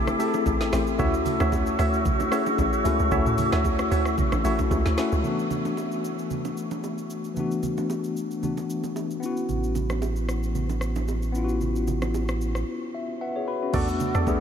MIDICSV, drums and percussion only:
0, 0, Header, 1, 2, 480
1, 0, Start_track
1, 0, Tempo, 530973
1, 898, Time_signature, 4, 2, 24, 8
1, 13019, End_track
2, 0, Start_track
2, 0, Title_t, "Drums"
2, 67, Note_on_c, 9, 37, 99
2, 68, Note_on_c, 9, 61, 79
2, 68, Note_on_c, 9, 82, 56
2, 158, Note_off_c, 9, 37, 0
2, 159, Note_off_c, 9, 61, 0
2, 159, Note_off_c, 9, 82, 0
2, 179, Note_on_c, 9, 46, 58
2, 179, Note_on_c, 9, 82, 95
2, 270, Note_off_c, 9, 46, 0
2, 270, Note_off_c, 9, 82, 0
2, 305, Note_on_c, 9, 82, 60
2, 307, Note_on_c, 9, 61, 79
2, 395, Note_off_c, 9, 82, 0
2, 398, Note_off_c, 9, 61, 0
2, 416, Note_on_c, 9, 36, 88
2, 417, Note_on_c, 9, 82, 71
2, 420, Note_on_c, 9, 60, 70
2, 506, Note_off_c, 9, 36, 0
2, 508, Note_off_c, 9, 82, 0
2, 511, Note_off_c, 9, 60, 0
2, 549, Note_on_c, 9, 38, 66
2, 550, Note_on_c, 9, 82, 58
2, 639, Note_off_c, 9, 38, 0
2, 640, Note_off_c, 9, 82, 0
2, 655, Note_on_c, 9, 60, 60
2, 658, Note_on_c, 9, 37, 106
2, 658, Note_on_c, 9, 38, 71
2, 660, Note_on_c, 9, 46, 54
2, 660, Note_on_c, 9, 82, 91
2, 746, Note_off_c, 9, 60, 0
2, 749, Note_off_c, 9, 37, 0
2, 749, Note_off_c, 9, 38, 0
2, 750, Note_off_c, 9, 46, 0
2, 750, Note_off_c, 9, 82, 0
2, 786, Note_on_c, 9, 82, 49
2, 876, Note_off_c, 9, 82, 0
2, 896, Note_on_c, 9, 82, 60
2, 897, Note_on_c, 9, 36, 120
2, 897, Note_on_c, 9, 64, 75
2, 986, Note_off_c, 9, 82, 0
2, 987, Note_off_c, 9, 36, 0
2, 988, Note_off_c, 9, 64, 0
2, 1029, Note_on_c, 9, 82, 59
2, 1120, Note_off_c, 9, 82, 0
2, 1134, Note_on_c, 9, 61, 59
2, 1134, Note_on_c, 9, 64, 82
2, 1137, Note_on_c, 9, 46, 59
2, 1137, Note_on_c, 9, 82, 99
2, 1224, Note_off_c, 9, 61, 0
2, 1224, Note_off_c, 9, 64, 0
2, 1228, Note_off_c, 9, 46, 0
2, 1228, Note_off_c, 9, 82, 0
2, 1266, Note_on_c, 9, 82, 54
2, 1268, Note_on_c, 9, 37, 100
2, 1268, Note_on_c, 9, 61, 80
2, 1357, Note_off_c, 9, 82, 0
2, 1358, Note_off_c, 9, 37, 0
2, 1359, Note_off_c, 9, 61, 0
2, 1375, Note_on_c, 9, 36, 89
2, 1377, Note_on_c, 9, 60, 84
2, 1381, Note_on_c, 9, 82, 73
2, 1466, Note_off_c, 9, 36, 0
2, 1467, Note_off_c, 9, 60, 0
2, 1471, Note_off_c, 9, 82, 0
2, 1505, Note_on_c, 9, 82, 59
2, 1595, Note_off_c, 9, 82, 0
2, 1617, Note_on_c, 9, 37, 93
2, 1620, Note_on_c, 9, 46, 56
2, 1620, Note_on_c, 9, 82, 91
2, 1708, Note_off_c, 9, 37, 0
2, 1711, Note_off_c, 9, 46, 0
2, 1711, Note_off_c, 9, 82, 0
2, 1750, Note_on_c, 9, 82, 51
2, 1840, Note_off_c, 9, 82, 0
2, 1856, Note_on_c, 9, 36, 114
2, 1857, Note_on_c, 9, 82, 77
2, 1858, Note_on_c, 9, 64, 79
2, 1947, Note_off_c, 9, 36, 0
2, 1947, Note_off_c, 9, 82, 0
2, 1949, Note_off_c, 9, 64, 0
2, 1989, Note_on_c, 9, 61, 73
2, 1989, Note_on_c, 9, 82, 59
2, 2079, Note_off_c, 9, 61, 0
2, 2079, Note_off_c, 9, 82, 0
2, 2095, Note_on_c, 9, 37, 104
2, 2101, Note_on_c, 9, 46, 59
2, 2101, Note_on_c, 9, 82, 100
2, 2185, Note_off_c, 9, 37, 0
2, 2191, Note_off_c, 9, 46, 0
2, 2191, Note_off_c, 9, 82, 0
2, 2226, Note_on_c, 9, 82, 60
2, 2228, Note_on_c, 9, 61, 82
2, 2316, Note_off_c, 9, 82, 0
2, 2319, Note_off_c, 9, 61, 0
2, 2335, Note_on_c, 9, 36, 88
2, 2338, Note_on_c, 9, 82, 73
2, 2341, Note_on_c, 9, 60, 70
2, 2426, Note_off_c, 9, 36, 0
2, 2428, Note_off_c, 9, 82, 0
2, 2431, Note_off_c, 9, 60, 0
2, 2468, Note_on_c, 9, 82, 60
2, 2558, Note_off_c, 9, 82, 0
2, 2576, Note_on_c, 9, 60, 60
2, 2579, Note_on_c, 9, 46, 56
2, 2579, Note_on_c, 9, 82, 94
2, 2667, Note_off_c, 9, 60, 0
2, 2669, Note_off_c, 9, 46, 0
2, 2669, Note_off_c, 9, 82, 0
2, 2705, Note_on_c, 9, 82, 52
2, 2796, Note_off_c, 9, 82, 0
2, 2815, Note_on_c, 9, 82, 61
2, 2816, Note_on_c, 9, 36, 117
2, 2819, Note_on_c, 9, 64, 70
2, 2906, Note_off_c, 9, 82, 0
2, 2907, Note_off_c, 9, 36, 0
2, 2909, Note_off_c, 9, 64, 0
2, 2949, Note_on_c, 9, 45, 87
2, 2950, Note_on_c, 9, 82, 62
2, 3040, Note_off_c, 9, 45, 0
2, 3040, Note_off_c, 9, 82, 0
2, 3055, Note_on_c, 9, 46, 61
2, 3055, Note_on_c, 9, 82, 104
2, 3057, Note_on_c, 9, 61, 58
2, 3057, Note_on_c, 9, 64, 84
2, 3146, Note_off_c, 9, 46, 0
2, 3146, Note_off_c, 9, 82, 0
2, 3147, Note_off_c, 9, 61, 0
2, 3147, Note_off_c, 9, 64, 0
2, 3186, Note_on_c, 9, 82, 56
2, 3187, Note_on_c, 9, 37, 94
2, 3187, Note_on_c, 9, 38, 72
2, 3188, Note_on_c, 9, 61, 79
2, 3276, Note_off_c, 9, 82, 0
2, 3277, Note_off_c, 9, 37, 0
2, 3277, Note_off_c, 9, 38, 0
2, 3279, Note_off_c, 9, 61, 0
2, 3295, Note_on_c, 9, 36, 87
2, 3297, Note_on_c, 9, 60, 82
2, 3300, Note_on_c, 9, 82, 75
2, 3385, Note_off_c, 9, 36, 0
2, 3388, Note_off_c, 9, 60, 0
2, 3390, Note_off_c, 9, 82, 0
2, 3424, Note_on_c, 9, 82, 59
2, 3427, Note_on_c, 9, 37, 106
2, 3515, Note_off_c, 9, 82, 0
2, 3517, Note_off_c, 9, 37, 0
2, 3541, Note_on_c, 9, 46, 55
2, 3541, Note_on_c, 9, 82, 96
2, 3632, Note_off_c, 9, 46, 0
2, 3632, Note_off_c, 9, 82, 0
2, 3665, Note_on_c, 9, 37, 92
2, 3671, Note_on_c, 9, 82, 53
2, 3756, Note_off_c, 9, 37, 0
2, 3761, Note_off_c, 9, 82, 0
2, 3776, Note_on_c, 9, 36, 118
2, 3778, Note_on_c, 9, 82, 74
2, 3779, Note_on_c, 9, 64, 82
2, 3867, Note_off_c, 9, 36, 0
2, 3869, Note_off_c, 9, 64, 0
2, 3869, Note_off_c, 9, 82, 0
2, 3907, Note_on_c, 9, 37, 102
2, 3908, Note_on_c, 9, 82, 58
2, 3910, Note_on_c, 9, 61, 77
2, 3998, Note_off_c, 9, 37, 0
2, 3999, Note_off_c, 9, 82, 0
2, 4000, Note_off_c, 9, 61, 0
2, 4020, Note_on_c, 9, 46, 59
2, 4020, Note_on_c, 9, 82, 96
2, 4111, Note_off_c, 9, 46, 0
2, 4111, Note_off_c, 9, 82, 0
2, 4147, Note_on_c, 9, 82, 59
2, 4149, Note_on_c, 9, 61, 83
2, 4150, Note_on_c, 9, 36, 91
2, 4237, Note_off_c, 9, 82, 0
2, 4239, Note_off_c, 9, 61, 0
2, 4240, Note_off_c, 9, 36, 0
2, 4257, Note_on_c, 9, 36, 89
2, 4261, Note_on_c, 9, 60, 68
2, 4261, Note_on_c, 9, 82, 66
2, 4347, Note_off_c, 9, 36, 0
2, 4351, Note_off_c, 9, 60, 0
2, 4352, Note_off_c, 9, 82, 0
2, 4391, Note_on_c, 9, 38, 66
2, 4392, Note_on_c, 9, 82, 57
2, 4481, Note_off_c, 9, 38, 0
2, 4482, Note_off_c, 9, 82, 0
2, 4497, Note_on_c, 9, 60, 59
2, 4500, Note_on_c, 9, 37, 103
2, 4500, Note_on_c, 9, 38, 76
2, 4502, Note_on_c, 9, 46, 55
2, 4502, Note_on_c, 9, 82, 90
2, 4587, Note_off_c, 9, 60, 0
2, 4590, Note_off_c, 9, 37, 0
2, 4590, Note_off_c, 9, 38, 0
2, 4592, Note_off_c, 9, 46, 0
2, 4592, Note_off_c, 9, 82, 0
2, 4629, Note_on_c, 9, 82, 51
2, 4719, Note_off_c, 9, 82, 0
2, 4738, Note_on_c, 9, 64, 67
2, 4739, Note_on_c, 9, 82, 55
2, 4829, Note_off_c, 9, 64, 0
2, 4830, Note_off_c, 9, 82, 0
2, 4873, Note_on_c, 9, 82, 53
2, 4964, Note_off_c, 9, 82, 0
2, 4976, Note_on_c, 9, 61, 51
2, 4976, Note_on_c, 9, 64, 73
2, 4980, Note_on_c, 9, 82, 94
2, 5067, Note_off_c, 9, 61, 0
2, 5067, Note_off_c, 9, 64, 0
2, 5070, Note_off_c, 9, 82, 0
2, 5110, Note_on_c, 9, 61, 78
2, 5110, Note_on_c, 9, 82, 50
2, 5200, Note_off_c, 9, 61, 0
2, 5200, Note_off_c, 9, 82, 0
2, 5219, Note_on_c, 9, 60, 73
2, 5223, Note_on_c, 9, 82, 66
2, 5309, Note_off_c, 9, 60, 0
2, 5314, Note_off_c, 9, 82, 0
2, 5348, Note_on_c, 9, 82, 53
2, 5439, Note_off_c, 9, 82, 0
2, 5465, Note_on_c, 9, 82, 85
2, 5555, Note_off_c, 9, 82, 0
2, 5594, Note_on_c, 9, 82, 47
2, 5684, Note_off_c, 9, 82, 0
2, 5700, Note_on_c, 9, 82, 65
2, 5701, Note_on_c, 9, 64, 71
2, 5790, Note_off_c, 9, 82, 0
2, 5791, Note_off_c, 9, 64, 0
2, 5830, Note_on_c, 9, 61, 70
2, 5830, Note_on_c, 9, 82, 53
2, 5920, Note_off_c, 9, 61, 0
2, 5921, Note_off_c, 9, 82, 0
2, 5942, Note_on_c, 9, 82, 90
2, 6032, Note_off_c, 9, 82, 0
2, 6066, Note_on_c, 9, 82, 54
2, 6068, Note_on_c, 9, 61, 75
2, 6156, Note_off_c, 9, 82, 0
2, 6158, Note_off_c, 9, 61, 0
2, 6180, Note_on_c, 9, 82, 62
2, 6181, Note_on_c, 9, 60, 64
2, 6271, Note_off_c, 9, 60, 0
2, 6271, Note_off_c, 9, 82, 0
2, 6309, Note_on_c, 9, 82, 53
2, 6400, Note_off_c, 9, 82, 0
2, 6420, Note_on_c, 9, 82, 86
2, 6510, Note_off_c, 9, 82, 0
2, 6547, Note_on_c, 9, 82, 45
2, 6638, Note_off_c, 9, 82, 0
2, 6657, Note_on_c, 9, 82, 56
2, 6659, Note_on_c, 9, 64, 65
2, 6747, Note_off_c, 9, 82, 0
2, 6749, Note_off_c, 9, 64, 0
2, 6792, Note_on_c, 9, 82, 54
2, 6882, Note_off_c, 9, 82, 0
2, 6897, Note_on_c, 9, 61, 53
2, 6897, Note_on_c, 9, 64, 73
2, 6898, Note_on_c, 9, 82, 92
2, 6987, Note_off_c, 9, 61, 0
2, 6987, Note_off_c, 9, 64, 0
2, 6988, Note_off_c, 9, 82, 0
2, 7029, Note_on_c, 9, 82, 51
2, 7031, Note_on_c, 9, 61, 78
2, 7119, Note_off_c, 9, 82, 0
2, 7121, Note_off_c, 9, 61, 0
2, 7139, Note_on_c, 9, 60, 75
2, 7143, Note_on_c, 9, 82, 66
2, 7229, Note_off_c, 9, 60, 0
2, 7233, Note_off_c, 9, 82, 0
2, 7267, Note_on_c, 9, 82, 53
2, 7358, Note_off_c, 9, 82, 0
2, 7383, Note_on_c, 9, 82, 85
2, 7473, Note_off_c, 9, 82, 0
2, 7512, Note_on_c, 9, 82, 47
2, 7603, Note_off_c, 9, 82, 0
2, 7620, Note_on_c, 9, 64, 71
2, 7622, Note_on_c, 9, 82, 67
2, 7711, Note_off_c, 9, 64, 0
2, 7712, Note_off_c, 9, 82, 0
2, 7750, Note_on_c, 9, 61, 67
2, 7752, Note_on_c, 9, 82, 52
2, 7840, Note_off_c, 9, 61, 0
2, 7842, Note_off_c, 9, 82, 0
2, 7865, Note_on_c, 9, 82, 89
2, 7955, Note_off_c, 9, 82, 0
2, 7987, Note_on_c, 9, 61, 73
2, 7989, Note_on_c, 9, 82, 55
2, 8078, Note_off_c, 9, 61, 0
2, 8080, Note_off_c, 9, 82, 0
2, 8099, Note_on_c, 9, 60, 67
2, 8102, Note_on_c, 9, 82, 64
2, 8190, Note_off_c, 9, 60, 0
2, 8193, Note_off_c, 9, 82, 0
2, 8232, Note_on_c, 9, 82, 54
2, 8322, Note_off_c, 9, 82, 0
2, 8343, Note_on_c, 9, 82, 84
2, 8434, Note_off_c, 9, 82, 0
2, 8469, Note_on_c, 9, 82, 48
2, 8559, Note_off_c, 9, 82, 0
2, 8577, Note_on_c, 9, 64, 66
2, 8578, Note_on_c, 9, 82, 58
2, 8667, Note_off_c, 9, 64, 0
2, 8668, Note_off_c, 9, 82, 0
2, 8711, Note_on_c, 9, 82, 55
2, 8802, Note_off_c, 9, 82, 0
2, 8815, Note_on_c, 9, 61, 52
2, 8815, Note_on_c, 9, 64, 73
2, 8818, Note_on_c, 9, 82, 93
2, 8906, Note_off_c, 9, 61, 0
2, 8906, Note_off_c, 9, 64, 0
2, 8908, Note_off_c, 9, 82, 0
2, 8947, Note_on_c, 9, 82, 51
2, 8948, Note_on_c, 9, 37, 89
2, 8949, Note_on_c, 9, 61, 74
2, 9038, Note_off_c, 9, 82, 0
2, 9039, Note_off_c, 9, 37, 0
2, 9039, Note_off_c, 9, 61, 0
2, 9057, Note_on_c, 9, 60, 74
2, 9061, Note_on_c, 9, 82, 70
2, 9148, Note_off_c, 9, 60, 0
2, 9151, Note_off_c, 9, 82, 0
2, 9185, Note_on_c, 9, 82, 55
2, 9275, Note_off_c, 9, 82, 0
2, 9299, Note_on_c, 9, 37, 86
2, 9302, Note_on_c, 9, 82, 83
2, 9389, Note_off_c, 9, 37, 0
2, 9392, Note_off_c, 9, 82, 0
2, 9430, Note_on_c, 9, 82, 47
2, 9521, Note_off_c, 9, 82, 0
2, 9538, Note_on_c, 9, 64, 71
2, 9538, Note_on_c, 9, 82, 66
2, 9629, Note_off_c, 9, 64, 0
2, 9629, Note_off_c, 9, 82, 0
2, 9668, Note_on_c, 9, 61, 66
2, 9669, Note_on_c, 9, 82, 54
2, 9758, Note_off_c, 9, 61, 0
2, 9759, Note_off_c, 9, 82, 0
2, 9772, Note_on_c, 9, 37, 92
2, 9779, Note_on_c, 9, 82, 91
2, 9863, Note_off_c, 9, 37, 0
2, 9869, Note_off_c, 9, 82, 0
2, 9904, Note_on_c, 9, 82, 54
2, 9907, Note_on_c, 9, 61, 77
2, 9995, Note_off_c, 9, 82, 0
2, 9998, Note_off_c, 9, 61, 0
2, 10016, Note_on_c, 9, 82, 64
2, 10020, Note_on_c, 9, 60, 66
2, 10107, Note_off_c, 9, 82, 0
2, 10110, Note_off_c, 9, 60, 0
2, 10146, Note_on_c, 9, 82, 53
2, 10237, Note_off_c, 9, 82, 0
2, 10258, Note_on_c, 9, 82, 81
2, 10349, Note_off_c, 9, 82, 0
2, 10385, Note_on_c, 9, 82, 46
2, 10475, Note_off_c, 9, 82, 0
2, 10495, Note_on_c, 9, 82, 56
2, 10497, Note_on_c, 9, 64, 66
2, 10585, Note_off_c, 9, 82, 0
2, 10587, Note_off_c, 9, 64, 0
2, 10628, Note_on_c, 9, 82, 56
2, 10719, Note_off_c, 9, 82, 0
2, 10735, Note_on_c, 9, 61, 52
2, 10735, Note_on_c, 9, 64, 73
2, 10735, Note_on_c, 9, 82, 91
2, 10825, Note_off_c, 9, 61, 0
2, 10825, Note_off_c, 9, 64, 0
2, 10825, Note_off_c, 9, 82, 0
2, 10865, Note_on_c, 9, 82, 52
2, 10866, Note_on_c, 9, 37, 90
2, 10868, Note_on_c, 9, 61, 75
2, 10955, Note_off_c, 9, 82, 0
2, 10956, Note_off_c, 9, 37, 0
2, 10958, Note_off_c, 9, 61, 0
2, 10978, Note_on_c, 9, 60, 75
2, 10978, Note_on_c, 9, 82, 68
2, 11068, Note_off_c, 9, 60, 0
2, 11069, Note_off_c, 9, 82, 0
2, 11105, Note_on_c, 9, 82, 52
2, 11108, Note_on_c, 9, 37, 96
2, 11196, Note_off_c, 9, 82, 0
2, 11199, Note_off_c, 9, 37, 0
2, 11221, Note_on_c, 9, 82, 83
2, 11312, Note_off_c, 9, 82, 0
2, 11346, Note_on_c, 9, 37, 83
2, 11352, Note_on_c, 9, 82, 46
2, 11436, Note_off_c, 9, 37, 0
2, 11442, Note_off_c, 9, 82, 0
2, 12417, Note_on_c, 9, 49, 91
2, 12417, Note_on_c, 9, 82, 60
2, 12418, Note_on_c, 9, 36, 114
2, 12418, Note_on_c, 9, 64, 70
2, 12507, Note_off_c, 9, 49, 0
2, 12507, Note_off_c, 9, 82, 0
2, 12508, Note_off_c, 9, 36, 0
2, 12508, Note_off_c, 9, 64, 0
2, 12550, Note_on_c, 9, 82, 57
2, 12640, Note_off_c, 9, 82, 0
2, 12656, Note_on_c, 9, 61, 57
2, 12656, Note_on_c, 9, 64, 78
2, 12658, Note_on_c, 9, 82, 96
2, 12747, Note_off_c, 9, 61, 0
2, 12747, Note_off_c, 9, 64, 0
2, 12748, Note_off_c, 9, 82, 0
2, 12788, Note_on_c, 9, 82, 54
2, 12790, Note_on_c, 9, 37, 88
2, 12879, Note_off_c, 9, 82, 0
2, 12880, Note_off_c, 9, 37, 0
2, 12896, Note_on_c, 9, 36, 87
2, 12899, Note_on_c, 9, 60, 79
2, 12903, Note_on_c, 9, 82, 74
2, 12987, Note_off_c, 9, 36, 0
2, 12989, Note_off_c, 9, 60, 0
2, 12993, Note_off_c, 9, 82, 0
2, 13019, End_track
0, 0, End_of_file